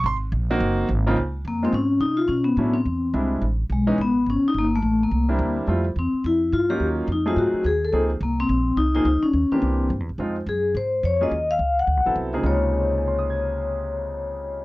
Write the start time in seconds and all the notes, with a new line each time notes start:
0.04 G#1 C6
0.32 A#1
0.50 A#3 C4 D#4 F#4
0.60 F#1
0.89 G#1
1.07 C#3 A#3 C4 D#4 F4
1.16 C#2
1.45 F2 A#3
1.63 G#3 A#3 C4 D#4 F4
1.73 G#2 C#4
2.00 C3 D#4
2.17 F4
2.28 B2 C#4
2.44 B3
2.57 A2 F#3 A3 C#4 D4 E4
2.74 C4
2.85 E2
3.14 C2 G3 G#3 C4 D4 E4
3.42 A1
3.70 B1 G#3
3.87 E3 G#3 B3 C#4 D#4
3.98 A1 B3
4.26 G#1 C#4
4.44 muted upright bass stroke
4.48 D#4
4.54 G1
4.58 A#3
4.76 A3
4.82 A1
5.03 A#3
5.11 C2
5.29 G3 A#3 C4 D4 E4
5.39 D2
5.67 F2 G3 A3 C4 E4 F4
5.96 E2 C4
6.13 muted upright bass stroke
6.24 F2 E4
6.52 G2 F4
6.69 F#3 A#3 C#4 D#4 F4 G4
6.80 D#2
7.08 F2
7.12 D#4
7.26 F#3 A3 C4 D#4 F4 G#4
7.36 G#2 F#4
7.53 muted upright bass stroke
7.64 D#2 G#4
7.85 A4
7.93 C#2 F3 A#3 C4 D#4 G#4
8.21 C2 A#3
8.40 C4
8.49 A#1
8.77 C2 D#4
8.95 F3 A#3 C4 D#4 G#4
9.05 C#2 D#4
9.23 C#4, muted upright bass stroke
9.33 D#2
9.51 E3 A#3 C4 D4 G4, muted upright bass stroke
9.62 C2
9.90 G2
10.00 E2
10.09 C2
10.18 F2 F3 G#3 C4 D#4 F4
10.46 F#2 G#4
10.75 G#2 C5
11.03 F2 C#5
11.21 F#3 A#3 C#4 F4 G#4 D#5
11.31 D#2
11.51 F5
11.59 C#2
11.79 F#5
11.87 D2
11.97 C2
12.06 A1 F#3 B3 C4 E4 A4
12.16 C2
12.33 C#2 F3 A#3 C4 D#4 G#4
12.43 C#2 C3 C#3 G#3 A#3 D#4 F4 C#5
12.73 G#4
12.80 C5
12.89 D#5
12.98 G#5
13.08 C6
13.19 D#6
13.30 G#6